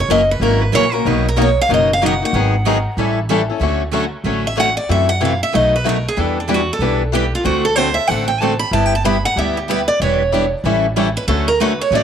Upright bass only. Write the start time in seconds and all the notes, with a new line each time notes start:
0.09 F#1
0.40 G#1
0.73 A#1
1.05 B1
1.69 F#1
2.33 G#1
2.97 A1
3.60 D2
4.24 A1
4.89 F#2
5.54 B1
6.17 E2
6.79 B1
7.45 D2
8.10 A1
8.71 G1
9.36 D2
10.00 E1
10.64 A1
11.28 D2
11.91 A1